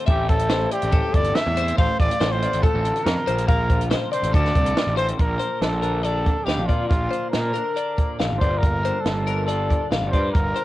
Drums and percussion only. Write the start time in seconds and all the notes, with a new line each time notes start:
0.07 kick, closed hi-hat
0.29 kick, closed hi-hat
0.39 closed hi-hat
0.49 snare, closed hi-hat
0.71 closed hi-hat
0.82 closed hi-hat
0.92 kick, closed hi-hat
1.14 kick, closed hi-hat
1.24 closed hi-hat
1.35 snare, closed hi-hat
1.57 closed hi-hat
1.68 closed hi-hat
1.78 kick, closed hi-hat
2.00 kick, closed hi-hat
2.11 closed hi-hat
2.21 snare, closed hi-hat
2.42 closed hi-hat
2.53 closed hi-hat
2.63 kick, closed hi-hat
2.85 closed hi-hat
2.96 closed hi-hat
3.06 snare, closed hi-hat
3.27 closed hi-hat
3.38 closed hi-hat
3.49 kick, closed hi-hat
3.70 kick, closed hi-hat
3.81 closed hi-hat
3.91 snare, closed hi-hat
4.13 closed hi-hat
4.23 closed hi-hat
4.34 kick, closed hi-hat
4.45 snare
4.55 kick, closed hi-hat
4.66 closed hi-hat
4.77 snare, closed hi-hat
4.98 closed hi-hat
5.08 closed hi-hat
5.19 kick, closed hi-hat
5.41 closed hi-hat
5.62 snare, closed hi-hat
5.83 closed hi-hat
6.04 closed hi-hat
6.26 kick, closed hi-hat
6.48 snare, closed hi-hat
6.69 kick, closed hi-hat
6.91 kick, closed hi-hat
7.13 closed hi-hat
7.33 snare, closed hi-hat
7.55 closed hi-hat
7.77 closed hi-hat
7.98 kick, closed hi-hat
8.20 snare, closed hi-hat
8.41 kick, closed hi-hat
8.63 kick, closed hi-hat
8.85 closed hi-hat
9.06 snare, closed hi-hat
9.27 closed hi-hat
9.48 closed hi-hat
9.70 kick, closed hi-hat
9.92 snare, closed hi-hat
10.13 kick, closed hi-hat
10.35 kick, closed hi-hat
10.56 closed hi-hat